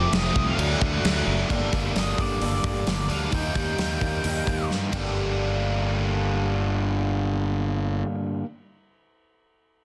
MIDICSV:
0, 0, Header, 1, 6, 480
1, 0, Start_track
1, 0, Key_signature, -2, "minor"
1, 0, Tempo, 457666
1, 1571, Time_signature, 4, 2, 24, 8
1, 10323, End_track
2, 0, Start_track
2, 0, Title_t, "Lead electric guitar"
2, 0, Program_c, 0, 29
2, 0, Note_on_c, 0, 74, 82
2, 142, Note_off_c, 0, 74, 0
2, 146, Note_on_c, 0, 75, 94
2, 494, Note_off_c, 0, 75, 0
2, 498, Note_on_c, 0, 77, 81
2, 608, Note_off_c, 0, 77, 0
2, 613, Note_on_c, 0, 78, 87
2, 1288, Note_off_c, 0, 78, 0
2, 2081, Note_on_c, 0, 75, 77
2, 2309, Note_off_c, 0, 75, 0
2, 2314, Note_on_c, 0, 74, 82
2, 2773, Note_off_c, 0, 74, 0
2, 2786, Note_on_c, 0, 74, 77
2, 3263, Note_off_c, 0, 74, 0
2, 3267, Note_on_c, 0, 77, 86
2, 3500, Note_on_c, 0, 79, 93
2, 3505, Note_off_c, 0, 77, 0
2, 4895, Note_off_c, 0, 79, 0
2, 10323, End_track
3, 0, Start_track
3, 0, Title_t, "Steel-string acoustic guitar"
3, 0, Program_c, 1, 25
3, 1568, Note_on_c, 1, 43, 85
3, 1574, Note_on_c, 1, 50, 89
3, 1582, Note_on_c, 1, 55, 99
3, 1589, Note_on_c, 1, 58, 96
3, 1590, Note_on_c, 1, 62, 94
3, 1598, Note_on_c, 1, 69, 105
3, 1799, Note_off_c, 1, 69, 0
3, 1805, Note_off_c, 1, 62, 0
3, 1811, Note_on_c, 1, 69, 63
3, 1817, Note_on_c, 1, 62, 76
3, 1827, Note_off_c, 1, 58, 0
3, 1831, Note_on_c, 1, 58, 61
3, 1832, Note_off_c, 1, 55, 0
3, 1837, Note_on_c, 1, 55, 54
3, 2038, Note_off_c, 1, 55, 0
3, 2042, Note_on_c, 1, 55, 73
3, 2047, Note_off_c, 1, 62, 0
3, 2048, Note_off_c, 1, 43, 0
3, 2049, Note_off_c, 1, 58, 0
3, 2051, Note_off_c, 1, 50, 0
3, 2053, Note_on_c, 1, 58, 72
3, 2058, Note_off_c, 1, 69, 0
3, 2060, Note_on_c, 1, 62, 73
3, 2071, Note_on_c, 1, 69, 70
3, 2272, Note_off_c, 1, 69, 0
3, 2280, Note_off_c, 1, 62, 0
3, 2285, Note_on_c, 1, 69, 63
3, 2293, Note_on_c, 1, 62, 67
3, 2300, Note_off_c, 1, 58, 0
3, 2304, Note_on_c, 1, 58, 58
3, 2308, Note_off_c, 1, 55, 0
3, 2312, Note_on_c, 1, 55, 49
3, 2525, Note_on_c, 1, 43, 85
3, 2529, Note_off_c, 1, 62, 0
3, 2530, Note_on_c, 1, 50, 87
3, 2533, Note_off_c, 1, 55, 0
3, 2537, Note_off_c, 1, 58, 0
3, 2537, Note_on_c, 1, 55, 90
3, 2540, Note_off_c, 1, 69, 0
3, 2541, Note_on_c, 1, 58, 97
3, 2542, Note_on_c, 1, 62, 87
3, 2553, Note_on_c, 1, 69, 103
3, 2751, Note_off_c, 1, 69, 0
3, 2758, Note_off_c, 1, 62, 0
3, 2763, Note_on_c, 1, 69, 60
3, 2771, Note_on_c, 1, 62, 56
3, 2775, Note_off_c, 1, 58, 0
3, 2779, Note_on_c, 1, 58, 60
3, 2786, Note_off_c, 1, 55, 0
3, 2791, Note_on_c, 1, 55, 53
3, 2987, Note_off_c, 1, 55, 0
3, 2991, Note_on_c, 1, 55, 67
3, 2999, Note_off_c, 1, 62, 0
3, 3002, Note_off_c, 1, 58, 0
3, 3006, Note_off_c, 1, 43, 0
3, 3006, Note_on_c, 1, 58, 71
3, 3009, Note_off_c, 1, 50, 0
3, 3010, Note_off_c, 1, 69, 0
3, 3012, Note_on_c, 1, 62, 73
3, 3022, Note_on_c, 1, 69, 69
3, 3476, Note_off_c, 1, 62, 0
3, 3481, Note_off_c, 1, 69, 0
3, 3481, Note_on_c, 1, 51, 85
3, 3484, Note_off_c, 1, 55, 0
3, 3489, Note_on_c, 1, 53, 80
3, 3491, Note_off_c, 1, 58, 0
3, 3496, Note_on_c, 1, 55, 92
3, 3498, Note_on_c, 1, 63, 89
3, 3506, Note_on_c, 1, 70, 103
3, 3710, Note_off_c, 1, 70, 0
3, 3722, Note_on_c, 1, 70, 70
3, 3725, Note_off_c, 1, 63, 0
3, 3735, Note_off_c, 1, 55, 0
3, 3738, Note_on_c, 1, 63, 62
3, 3747, Note_on_c, 1, 55, 58
3, 3955, Note_off_c, 1, 53, 0
3, 3964, Note_off_c, 1, 55, 0
3, 3966, Note_off_c, 1, 51, 0
3, 3968, Note_on_c, 1, 53, 62
3, 3974, Note_off_c, 1, 63, 0
3, 3977, Note_on_c, 1, 55, 70
3, 3981, Note_off_c, 1, 70, 0
3, 3987, Note_on_c, 1, 63, 67
3, 3994, Note_on_c, 1, 70, 68
3, 4195, Note_off_c, 1, 70, 0
3, 4208, Note_off_c, 1, 63, 0
3, 4208, Note_on_c, 1, 70, 60
3, 4220, Note_off_c, 1, 55, 0
3, 4221, Note_on_c, 1, 63, 53
3, 4233, Note_on_c, 1, 55, 54
3, 4449, Note_off_c, 1, 53, 0
3, 4459, Note_on_c, 1, 51, 78
3, 4461, Note_off_c, 1, 55, 0
3, 4465, Note_off_c, 1, 63, 0
3, 4466, Note_on_c, 1, 53, 81
3, 4470, Note_off_c, 1, 70, 0
3, 4474, Note_on_c, 1, 55, 93
3, 4477, Note_on_c, 1, 63, 95
3, 4483, Note_on_c, 1, 70, 87
3, 4682, Note_off_c, 1, 70, 0
3, 4695, Note_on_c, 1, 70, 64
3, 4696, Note_off_c, 1, 63, 0
3, 4708, Note_off_c, 1, 55, 0
3, 4708, Note_on_c, 1, 63, 52
3, 4721, Note_on_c, 1, 55, 50
3, 4921, Note_off_c, 1, 53, 0
3, 4931, Note_off_c, 1, 55, 0
3, 4934, Note_on_c, 1, 53, 64
3, 4935, Note_off_c, 1, 51, 0
3, 4940, Note_off_c, 1, 63, 0
3, 4943, Note_on_c, 1, 55, 61
3, 4945, Note_off_c, 1, 70, 0
3, 4952, Note_on_c, 1, 63, 69
3, 4958, Note_on_c, 1, 70, 70
3, 5156, Note_on_c, 1, 43, 92
3, 5165, Note_off_c, 1, 55, 0
3, 5167, Note_on_c, 1, 50, 91
3, 5173, Note_off_c, 1, 53, 0
3, 5178, Note_on_c, 1, 55, 86
3, 5182, Note_off_c, 1, 63, 0
3, 5185, Note_off_c, 1, 70, 0
3, 5187, Note_on_c, 1, 58, 83
3, 5190, Note_on_c, 1, 62, 90
3, 5203, Note_on_c, 1, 69, 88
3, 8827, Note_off_c, 1, 43, 0
3, 8838, Note_off_c, 1, 50, 0
3, 8849, Note_off_c, 1, 55, 0
3, 8858, Note_off_c, 1, 58, 0
3, 8861, Note_off_c, 1, 62, 0
3, 8874, Note_off_c, 1, 69, 0
3, 10323, End_track
4, 0, Start_track
4, 0, Title_t, "Overdriven electric guitar"
4, 0, Program_c, 2, 29
4, 0, Note_on_c, 2, 41, 94
4, 0, Note_on_c, 2, 48, 94
4, 0, Note_on_c, 2, 53, 98
4, 0, Note_on_c, 2, 57, 116
4, 0, Note_on_c, 2, 60, 102
4, 591, Note_off_c, 2, 41, 0
4, 594, Note_off_c, 2, 48, 0
4, 599, Note_on_c, 2, 50, 91
4, 603, Note_off_c, 2, 53, 0
4, 608, Note_off_c, 2, 57, 0
4, 611, Note_off_c, 2, 60, 0
4, 615, Note_on_c, 2, 54, 108
4, 627, Note_on_c, 2, 57, 99
4, 637, Note_on_c, 2, 62, 113
4, 1548, Note_off_c, 2, 50, 0
4, 1556, Note_off_c, 2, 54, 0
4, 1558, Note_on_c, 2, 43, 80
4, 1562, Note_off_c, 2, 57, 0
4, 1567, Note_off_c, 2, 62, 0
4, 1573, Note_on_c, 2, 50, 86
4, 1583, Note_on_c, 2, 55, 81
4, 1591, Note_on_c, 2, 58, 86
4, 1599, Note_on_c, 2, 62, 92
4, 3225, Note_off_c, 2, 62, 0
4, 3228, Note_off_c, 2, 43, 0
4, 3235, Note_off_c, 2, 50, 0
4, 3237, Note_on_c, 2, 62, 74
4, 3243, Note_off_c, 2, 58, 0
4, 3247, Note_on_c, 2, 58, 63
4, 3254, Note_off_c, 2, 55, 0
4, 3258, Note_on_c, 2, 55, 68
4, 3267, Note_on_c, 2, 50, 68
4, 3277, Note_on_c, 2, 43, 64
4, 3468, Note_off_c, 2, 50, 0
4, 3468, Note_off_c, 2, 62, 0
4, 3472, Note_on_c, 2, 51, 76
4, 3479, Note_off_c, 2, 55, 0
4, 3484, Note_on_c, 2, 55, 82
4, 3488, Note_off_c, 2, 43, 0
4, 3493, Note_off_c, 2, 58, 0
4, 3497, Note_on_c, 2, 58, 85
4, 3512, Note_on_c, 2, 63, 92
4, 5149, Note_off_c, 2, 51, 0
4, 5154, Note_off_c, 2, 55, 0
4, 5161, Note_off_c, 2, 58, 0
4, 5162, Note_on_c, 2, 43, 76
4, 5168, Note_off_c, 2, 63, 0
4, 5176, Note_on_c, 2, 50, 78
4, 5186, Note_on_c, 2, 55, 80
4, 5196, Note_on_c, 2, 58, 83
4, 5203, Note_on_c, 2, 62, 82
4, 8833, Note_off_c, 2, 43, 0
4, 8847, Note_off_c, 2, 50, 0
4, 8856, Note_off_c, 2, 55, 0
4, 8867, Note_off_c, 2, 58, 0
4, 8873, Note_off_c, 2, 62, 0
4, 10323, End_track
5, 0, Start_track
5, 0, Title_t, "Fingered electric bass"
5, 0, Program_c, 3, 33
5, 129, Note_on_c, 3, 29, 99
5, 301, Note_off_c, 3, 29, 0
5, 371, Note_on_c, 3, 36, 96
5, 542, Note_off_c, 3, 36, 0
5, 608, Note_on_c, 3, 38, 105
5, 780, Note_off_c, 3, 38, 0
5, 853, Note_on_c, 3, 38, 92
5, 1022, Note_off_c, 3, 38, 0
5, 1096, Note_on_c, 3, 38, 105
5, 1264, Note_off_c, 3, 38, 0
5, 1332, Note_on_c, 3, 30, 97
5, 1501, Note_off_c, 3, 30, 0
5, 1575, Note_on_c, 3, 31, 91
5, 1801, Note_off_c, 3, 31, 0
5, 1815, Note_on_c, 3, 31, 81
5, 2040, Note_off_c, 3, 31, 0
5, 2052, Note_on_c, 3, 31, 85
5, 2279, Note_off_c, 3, 31, 0
5, 2288, Note_on_c, 3, 31, 82
5, 2517, Note_off_c, 3, 31, 0
5, 2530, Note_on_c, 3, 31, 91
5, 2758, Note_off_c, 3, 31, 0
5, 2767, Note_on_c, 3, 31, 81
5, 2996, Note_off_c, 3, 31, 0
5, 3008, Note_on_c, 3, 31, 85
5, 3236, Note_off_c, 3, 31, 0
5, 3244, Note_on_c, 3, 38, 77
5, 3475, Note_off_c, 3, 38, 0
5, 3488, Note_on_c, 3, 39, 87
5, 3717, Note_off_c, 3, 39, 0
5, 3726, Note_on_c, 3, 39, 82
5, 3956, Note_off_c, 3, 39, 0
5, 3967, Note_on_c, 3, 39, 74
5, 4197, Note_off_c, 3, 39, 0
5, 4211, Note_on_c, 3, 39, 83
5, 4439, Note_off_c, 3, 39, 0
5, 4451, Note_on_c, 3, 39, 83
5, 4680, Note_off_c, 3, 39, 0
5, 4690, Note_on_c, 3, 39, 83
5, 4919, Note_off_c, 3, 39, 0
5, 4929, Note_on_c, 3, 43, 83
5, 5159, Note_off_c, 3, 43, 0
5, 5169, Note_on_c, 3, 31, 79
5, 8413, Note_off_c, 3, 31, 0
5, 10323, End_track
6, 0, Start_track
6, 0, Title_t, "Drums"
6, 134, Note_on_c, 9, 49, 69
6, 140, Note_on_c, 9, 38, 123
6, 239, Note_off_c, 9, 49, 0
6, 245, Note_off_c, 9, 38, 0
6, 375, Note_on_c, 9, 36, 86
6, 480, Note_off_c, 9, 36, 0
6, 617, Note_on_c, 9, 49, 72
6, 722, Note_off_c, 9, 49, 0
6, 855, Note_on_c, 9, 36, 90
6, 960, Note_off_c, 9, 36, 0
6, 1098, Note_on_c, 9, 49, 73
6, 1104, Note_on_c, 9, 38, 114
6, 1203, Note_off_c, 9, 49, 0
6, 1209, Note_off_c, 9, 38, 0
6, 1575, Note_on_c, 9, 36, 88
6, 1576, Note_on_c, 9, 57, 77
6, 1679, Note_off_c, 9, 36, 0
6, 1681, Note_off_c, 9, 57, 0
6, 1813, Note_on_c, 9, 36, 83
6, 1815, Note_on_c, 9, 46, 44
6, 1918, Note_off_c, 9, 36, 0
6, 1920, Note_off_c, 9, 46, 0
6, 2054, Note_on_c, 9, 46, 61
6, 2060, Note_on_c, 9, 38, 101
6, 2158, Note_off_c, 9, 46, 0
6, 2165, Note_off_c, 9, 38, 0
6, 2290, Note_on_c, 9, 36, 73
6, 2291, Note_on_c, 9, 46, 41
6, 2395, Note_off_c, 9, 36, 0
6, 2396, Note_off_c, 9, 46, 0
6, 2534, Note_on_c, 9, 46, 60
6, 2639, Note_off_c, 9, 46, 0
6, 2769, Note_on_c, 9, 36, 76
6, 2773, Note_on_c, 9, 46, 48
6, 2874, Note_off_c, 9, 36, 0
6, 2878, Note_off_c, 9, 46, 0
6, 3008, Note_on_c, 9, 46, 60
6, 3015, Note_on_c, 9, 38, 101
6, 3113, Note_off_c, 9, 46, 0
6, 3120, Note_off_c, 9, 38, 0
6, 3248, Note_on_c, 9, 46, 45
6, 3353, Note_off_c, 9, 46, 0
6, 3485, Note_on_c, 9, 46, 60
6, 3488, Note_on_c, 9, 36, 94
6, 3590, Note_off_c, 9, 46, 0
6, 3593, Note_off_c, 9, 36, 0
6, 3727, Note_on_c, 9, 46, 49
6, 3728, Note_on_c, 9, 36, 76
6, 3832, Note_off_c, 9, 46, 0
6, 3833, Note_off_c, 9, 36, 0
6, 3970, Note_on_c, 9, 46, 64
6, 3976, Note_on_c, 9, 38, 90
6, 4074, Note_off_c, 9, 46, 0
6, 4081, Note_off_c, 9, 38, 0
6, 4209, Note_on_c, 9, 36, 80
6, 4210, Note_on_c, 9, 46, 45
6, 4314, Note_off_c, 9, 36, 0
6, 4315, Note_off_c, 9, 46, 0
6, 4447, Note_on_c, 9, 46, 69
6, 4552, Note_off_c, 9, 46, 0
6, 4690, Note_on_c, 9, 36, 72
6, 4691, Note_on_c, 9, 46, 51
6, 4795, Note_off_c, 9, 36, 0
6, 4796, Note_off_c, 9, 46, 0
6, 4940, Note_on_c, 9, 38, 54
6, 5045, Note_off_c, 9, 38, 0
6, 5169, Note_on_c, 9, 51, 76
6, 5171, Note_on_c, 9, 36, 60
6, 5274, Note_off_c, 9, 51, 0
6, 5275, Note_off_c, 9, 36, 0
6, 10323, End_track
0, 0, End_of_file